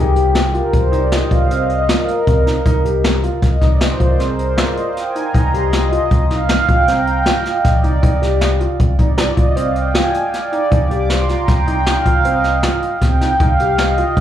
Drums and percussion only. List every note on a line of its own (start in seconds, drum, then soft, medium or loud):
0.16 closed hi-hat medium
0.35 snare medium
0.35 closed hi-hat medium
0.54 closed hi-hat soft
0.73 kick medium
0.73 closed hi-hat medium
0.93 closed hi-hat medium
1.12 snare medium
1.12 closed hi-hat medium
1.31 kick medium
1.31 closed hi-hat medium
1.51 closed hi-hat medium
1.70 closed hi-hat soft
1.89 snare loud
1.89 closed hi-hat medium
2.08 closed hi-hat medium
2.27 kick medium
2.27 closed hi-hat medium
2.47 snare soft
2.47 closed hi-hat medium
2.66 kick medium
2.66 closed hi-hat medium
2.85 closed hi-hat medium
3.04 snare loud
3.04 closed hi-hat medium
3.23 closed hi-hat medium
3.42 kick medium
3.42 snare soft
3.42 closed hi-hat medium
3.62 kick medium
3.62 snare soft
3.62 closed hi-hat medium
3.81 snare loud
3.81 closed hi-hat medium
4.00 kick medium
4.00 closed hi-hat medium
4.20 snare soft
4.20 closed hi-hat medium
4.39 closed hi-hat medium
4.58 snare loud
4.58 closed hi-hat medium
4.77 closed hi-hat medium
4.97 snare soft
4.97 closed hi-hat medium
5.15 closed hi-hat medium
5.35 kick medium
5.35 closed hi-hat medium
5.54 closed hi-hat medium
5.73 snare medium
5.73 closed hi-hat medium
5.92 closed hi-hat soft
6.11 kick loud
6.11 closed hi-hat medium
6.30 snare soft
6.30 closed hi-hat medium
6.49 snare loud
6.49 closed hi-hat medium
6.68 kick medium
6.68 closed hi-hat medium
6.88 snare soft
6.88 closed hi-hat medium
7.07 closed hi-hat medium
7.26 snare loud
7.26 closed hi-hat medium
7.45 snare soft
7.45 closed hi-hat medium
7.64 kick loud
7.64 snare soft
7.64 closed hi-hat medium
7.84 closed hi-hat medium
8.03 kick loud
8.03 closed hi-hat medium
8.22 snare soft
8.22 closed hi-hat medium
8.41 snare loud
8.41 closed hi-hat medium
8.60 closed hi-hat soft
8.79 kick loud
8.79 closed hi-hat medium
8.99 kick medium
8.99 closed hi-hat medium
9.18 snare loud
9.18 closed hi-hat medium
9.37 kick medium
9.37 closed hi-hat medium
9.56 closed hi-hat medium
9.75 closed hi-hat medium
9.95 snare loud
9.95 closed hi-hat medium
10.14 closed hi-hat medium
10.33 snare soft
10.33 closed hi-hat medium
10.52 closed hi-hat medium
10.72 kick loud
10.72 closed hi-hat medium
10.91 closed hi-hat medium
11.10 snare medium
11.10 closed hi-hat medium
11.29 snare soft
11.29 closed hi-hat soft
11.48 kick loud
11.48 snare soft
11.48 closed hi-hat medium
11.67 closed hi-hat medium
11.86 snare loud
11.86 closed hi-hat medium
12.06 kick medium
12.06 closed hi-hat medium
12.25 closed hi-hat medium
12.44 snare soft
12.44 closed hi-hat medium
12.63 snare loud
12.63 closed hi-hat medium
12.82 closed hi-hat medium
13.01 kick medium
13.01 snare soft
13.01 closed hi-hat medium
13.21 snare soft
13.21 closed hi-hat medium
13.40 kick loud
13.40 closed hi-hat medium
13.59 closed hi-hat medium
13.78 snare loud
13.78 closed hi-hat medium
13.97 closed hi-hat medium
14.17 kick medium
14.17 closed hi-hat medium